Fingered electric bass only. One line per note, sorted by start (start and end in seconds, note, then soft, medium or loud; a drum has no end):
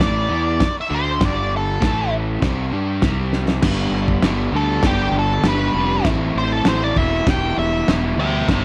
0.00 0.28 A1 loud
0.30 0.58 E2 loud
0.60 muted fingered electric bass stroke soft
0.91 1.19 D2 medium
1.20 1.77 G1 loud
1.82 2.39 A1 loud
2.42 2.70 C2 loud
2.72 3.01 G2 loud
3.02 3.59 C2 loud
3.63 3.88 G1 loud
3.91 4.17 G1 medium
4.22 4.48 G1 medium
4.53 4.78 D2 loud
4.83 5.09 G1 medium
5.12 5.38 G1 medium
5.43 5.69 G1 medium
5.74 6.00 F1 medium
6.05 6.30 A1 loud
6.36 6.61 A1 loud
6.66 6.91 A1 medium
6.96 7.21 E1 loud
7.27 7.52 E1 loud
7.57 7.82 E1 loud
7.88 8.13 E1 loud
8.17 8.42 D2 medium
8.48 8.65 G1 loud